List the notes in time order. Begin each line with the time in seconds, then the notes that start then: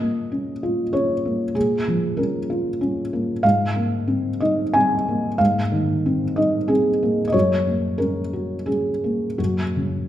Already playing: A#2 D#5
0.01 A#3
0.32 C#4
0.63 F4
0.93 C#4 C#5
1.25 A#3
1.55 A#2 G#4
1.88 F3
2.17 C#4 A#4
2.50 F4
2.81 C#4
3.13 A#3
3.43 G#2 F5
3.76 A#3
4.08 C4
4.40 D#4 D#5
4.74 C4 G#5
5.08 A#3
5.38 G#2 F5
5.72 D#3
6.06 C4
6.36 D#4 D#5
6.68 C4 G#4
7.03 A#3
7.28 D#5
7.32 F#2 C#5
7.67 A#3
7.98 C#4 A#4
8.33 F#4
8.66 C#4 G#4
9.04 A#3
9.38 F#2 F#4
9.76 C#3